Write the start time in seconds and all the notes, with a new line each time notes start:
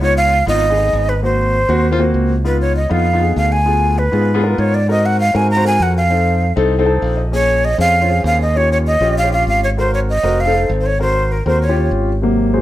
Already playing: C#2
0.01 B3 D#4 F4 C#5
0.17 F5
0.46 G#1 B3 D#4 F4 D#5
0.70 B3 D#4 G#4
0.77 B3 D#4 G#4
0.93 G#1
1.09 B4
1.22 A#3 C4 F#4 C5
1.69 D#2 A#3 C4 F#4
1.91 A#3 C4 F4
1.99 A#3 C4 F#4
2.14 C#2
2.44 B3 D#4 F4 B4
2.61 C#5
2.76 D#5
2.90 F2 B3 D#4 F4 F5
3.13 B3 D#4 F4
3.20 B3 D#4 G#4
3.36 D2 F5
3.52 G#5
3.66 B3 F4 G#4
3.98 B4
4.12 G#2 B3 F4 G#4
4.34 B3 F4 G#4
4.42 B3 F4 A#4
4.58 G#2 C#5
4.74 D5
4.88 C4 F#4 A#4 D#5
5.06 F#5
5.20 F5
5.33 G#2 C4 F#4 A#4 G#5
5.51 A#5
5.56 C4 F#4 C5
5.64 C4 F#4 A#4 G#5
5.80 F2 F#5
5.97 F5
6.10 C4 D#4 A4
6.56 C2 C4 D#4 A4
6.79 C4 D#4 A4
6.86 C4 D#4 A4 A5
7.02 A#1 F5
7.17 D#5
7.32 A#3 C#4 G#4 C#5
7.65 D#5
7.78 F2 C4 C#4 G#4 F5
8.01 C4 C#4 F4
8.09 C4 C#4 G#4
8.24 D#2 F5
8.42 D#5
8.55 C#4 F4 G4 C#5
8.72 C#5
8.87 D#5
9.00 A#1 C#4 F4 G4
9.18 F5
9.23 C#4 F4 G4
9.30 C#4 F4 G4 F5
9.47 G#1 F5
9.64 C#5
9.77 C4 F#4 A#4 C5
9.94 C#5
10.09 D#5
10.23 F1 C4 F#4 A#4
10.40 F5
10.46 C4 D#4 A4
10.53 C4 D#4 A4
10.69 G#1
10.81 C5
10.86 C#5
10.99 C4 F#4 A#4 C5
11.32 A#4
11.46 D#2 C4 F#4 A#4 C5
11.62 C#5
11.68 C#4 F4 G4
11.76 C#4 F4 G4
11.91 G#1
12.22 C3 F#3 A#3
12.54 C4 F#4 G#4 C5